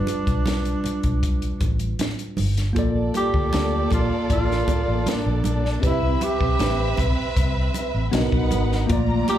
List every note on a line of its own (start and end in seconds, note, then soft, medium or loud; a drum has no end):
0.00 2.71 G3 medium
0.00 2.00 D4 medium
0.00 2.72 D4 medium
0.00 2.73 F4 soft
0.00 2.74 B4 medium
0.07 closed hi-hat medium
0.07 muted conga soft
0.27 0.75 B1 medium
0.27 kick medium
0.27 closed hi-hat soft
0.46 snare medium
0.46 closed hi-hat medium
0.46 high conga medium
0.65 closed hi-hat soft
0.84 muted fingered electric bass stroke soft
0.84 closed hi-hat medium
0.84 muted conga soft
1.03 1.52 B1 medium
1.03 kick medium
1.03 closed hi-hat soft
1.23 kick medium
1.23 closed hi-hat medium
1.42 closed hi-hat soft
1.61 1.93 A1 medium
1.61 kick medium
1.61 closed hi-hat medium
1.61 muted conga soft
1.79 closed hi-hat soft
1.99 snare loud
1.99 closed hi-hat medium
1.99 high conga medium
2.19 closed hi-hat medium
2.37 2.70 G1 medium
2.37 open hi-hat medium
2.37 high conga medium
2.57 snare soft
2.57 closed hi-hat medium
2.73 3.08 A#1 loud
2.73 5.77 A#3 medium
2.73 5.79 A#3 medium
2.73 5.78 F4 medium
2.73 5.79 A4 medium
2.73 5.79 D5 medium
2.73 kick loud
2.73 closed hi-hat medium
2.73 muted conga soft
2.79 5.80 D5 medium
3.14 3.88 G4 loud
3.14 closed hi-hat medium
3.14 muted conga soft
3.34 3.50 D2 medium
3.34 kick medium
3.53 3.85 D2 medium
3.53 snare medium
3.53 closed hi-hat medium
3.53 high conga medium
3.90 4.08 A#1 medium
3.90 4.28 F4 medium
3.90 kick medium
3.90 closed hi-hat medium
3.90 muted conga soft
4.30 4.62 A1 medium
4.30 5.10 F4 loud
4.30 kick medium
4.30 closed hi-hat medium
4.51 snare soft
4.68 kick medium
4.68 closed hi-hat medium
4.68 muted conga soft
4.68 low conga medium
4.88 5.04 A1 medium
5.06 5.84 D4 medium
5.06 snare loud
5.06 closed hi-hat medium
5.06 high conga medium
5.26 5.42 A#1 medium
5.44 5.77 A#1 medium
5.44 closed hi-hat medium
5.44 high conga medium
5.65 snare soft
5.80 6.15 C2 loud
5.80 8.08 C4 medium
5.80 8.09 C4 medium
5.80 8.09 G4 soft
5.80 8.09 B4 medium
5.80 8.10 B4 medium
5.80 8.09 E5 medium
5.80 kick loud
5.80 closed hi-hat medium
5.86 6.25 E4 medium
5.86 5.91 D#5 soft
5.92 8.14 E5 medium
6.21 6.99 G4 medium
6.21 closed hi-hat medium
6.21 muted conga medium
6.41 6.57 B1 medium
6.41 kick medium
6.59 6.92 A1 medium
6.59 snare loud
6.59 closed hi-hat medium
6.59 high conga medium
6.97 7.14 B1 medium
6.97 kick medium
6.97 closed hi-hat medium
6.97 muted conga soft
7.37 7.68 C2 medium
7.37 kick medium
7.37 closed hi-hat medium
7.74 closed hi-hat medium
7.74 muted conga soft
7.95 8.10 A1 medium
8.11 8.29 B1 loud
8.11 8.89 B3 medium
8.11 8.89 D#4 medium
8.11 8.89 F#4 medium
8.11 8.90 A#4 medium
8.11 8.88 B4 medium
8.11 8.90 D#5 medium
8.11 8.88 F#5 medium
8.11 snare loud
8.11 closed hi-hat medium
8.11 high conga medium
8.32 8.48 B1 medium
8.32 kick medium
8.51 8.84 G#1 medium
8.51 closed hi-hat medium
8.51 high conga medium
8.72 snare soft
8.87 9.22 A#1 loud
8.87 9.38 A3 medium
8.87 9.38 A#3 medium
8.87 9.38 F4 medium
8.87 9.38 D5 medium
8.87 9.38 A#5 loud
8.87 kick loud
8.87 closed hi-hat medium
8.87 muted conga soft
8.93 9.38 D5 medium
9.28 9.38 G4 loud
9.28 closed hi-hat medium
9.28 muted conga medium